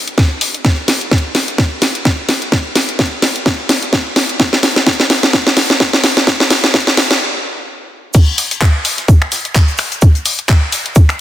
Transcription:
0.07 closed hi-hat
0.18 kick, snare, closed hi-hat
0.41 open hi-hat
0.54 closed hi-hat
0.65 kick, snare, closed hi-hat
0.88 snare, open hi-hat
1.01 closed hi-hat
1.11 kick, snare, closed hi-hat
1.18 closed hi-hat
1.35 snare, open hi-hat
1.48 closed hi-hat
1.58 kick, snare, closed hi-hat
1.82 snare, open hi-hat
1.95 closed hi-hat
2.05 kick, snare, closed hi-hat
2.29 snare, open hi-hat
2.42 closed hi-hat
2.52 kick, snare, closed hi-hat
2.75 snare, open hi-hat
2.89 closed hi-hat
2.99 kick, snare, closed hi-hat
3.06 closed hi-hat
3.22 snare, open hi-hat
3.36 closed hi-hat
3.46 kick, snare, closed hi-hat
3.69 snare, open hi-hat
3.82 closed hi-hat
3.93 kick, snare, closed hi-hat
4.16 snare, open hi-hat
4.29 closed hi-hat
4.40 kick, snare, closed hi-hat
4.53 snare
4.63 snare, open hi-hat
4.76 snare, closed hi-hat
4.86 kick, snare, closed hi-hat
4.93 closed hi-hat
5.00 snare
5.10 snare, open hi-hat
5.23 snare, closed hi-hat
5.33 kick, snare, closed hi-hat
5.47 snare
5.57 snare, open hi-hat
5.70 snare, closed hi-hat
5.80 kick, snare, closed hi-hat
5.93 snare
6.04 snare, open hi-hat
6.17 snare, closed hi-hat
6.27 kick, snare, closed hi-hat
6.40 snare
6.50 snare, open hi-hat
6.64 snare, closed hi-hat
6.74 kick, snare, closed hi-hat
6.80 closed hi-hat
6.87 snare
6.97 snare, open hi-hat
7.11 snare, closed hi-hat
8.14 kick, closed hi-hat, crash, shaker
8.38 open hi-hat, shaker
8.51 closed hi-hat
8.61 kick, snare, clap, closed hi-hat, shaker
8.85 open hi-hat, shaker
8.98 snare, closed hi-hat
9.08 kick, closed hi-hat, shaker
9.22 finger snap
9.32 snare, open hi-hat, shaker
9.45 closed hi-hat
9.55 kick, snare, clap, closed hi-hat, shaker
9.68 closed hi-hat
9.78 finger snap, open hi-hat, shaker
9.92 closed hi-hat
10.02 kick, closed hi-hat, shaker
10.15 closed hi-hat
10.25 open hi-hat, shaker
10.39 closed hi-hat
10.49 kick, snare, clap, closed hi-hat, shaker
10.72 open hi-hat, shaker
10.86 closed hi-hat
10.95 kick, closed hi-hat, shaker
11.09 finger snap, closed hi-hat

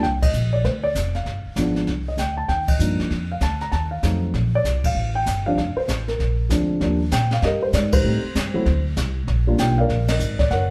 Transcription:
0.02 C2 G5, brush sweep, kick, snare
0.22 D#5, kick, ride
0.34 A#1, hi-hat pedal
0.53 D5
0.64 D2 C5, brush sweep, kick, snare
0.83 D5
0.95 F1, kick, snare, hi-hat pedal
1.15 F5, snare
1.26 G1, brush sweep, kick, snare
1.46 muted upright bass stroke
1.56 G#1 F3 G#3 B3 D4, kick, snare, hi-hat pedal
1.76 snare
1.87 C2, brush sweep, kick, snare
2.08 D#5
2.17 D2 G5, kick, snare, hi-hat pedal
2.37 A5
2.48 D#2 G5, brush sweep, kick, snare
2.68 D#5, kick, ride
2.79 G2 F3 A#3 D4 D#4, hi-hat pedal
2.99 muted upright bass stroke, snare
3.10 F2, brush sweep, kick, snare
3.32 F5
3.41 D2 A5, kick, snare, hi-hat pedal
3.61 A#5, snare
3.72 D#2 A5, brush sweep, kick, snare
3.91 F5
4.03 F2 F#3 A3 C4 D#4, kick, snare, hi-hat pedal
4.34 A#1, brush sweep, kick, snare
4.55 D5
4.64 C2, kick, snare, hi-hat pedal
4.84 F5, kick, ride
4.95 A1, brush sweep
5.15 G5
5.26 G1, kick, snare, hi-hat pedal
5.46 F3 G3 C4 D4 F5
5.57 F1, brush sweep, kick, snare
5.76 C5, muted upright bass stroke
5.88 A1, kick, snare, hi-hat pedal
6.08 A#4, snare
6.19 A#1, brush sweep, kick, snare
6.49 D2 F3 G#3 C4 D4, kick, snare, hi-hat pedal
6.81 D#2 F3 G3 A#3 D4, brush sweep, kick, snare
7.11 A#2 G5, kick, snare, hi-hat pedal
7.31 F5, snare
7.42 G2 G4 A#4 D#5, brush sweep, kick, snare
7.62 C5
7.73 G#2 D5, kick, snare, hi-hat pedal
7.92 D#4 G4 C5, kick, ride
8.04 A2 G3 A3 C4 D#4, brush sweep
8.23 muted upright bass stroke
8.35 G2, kick, snare, hi-hat pedal
8.54 F#3 A3 C4 E4, muted upright bass stroke
8.66 D2, brush sweep, kick, snare
8.96 C2, kick, snare, hi-hat pedal
9.27 A#1, brush sweep, kick, snare
9.47 G3 A#3 D4 F4
9.58 B1 G5, kick, snare, hi-hat pedal
9.78 A#4 D5 F5
9.89 A#1, brush sweep, kick, snare
10.08 A#4 D#5, snare, ride
10.19 G#1, hi-hat pedal
10.39 D5, kick, snare
10.50 F#1 A#4 C#5 F#5, brush sweep, kick, snare

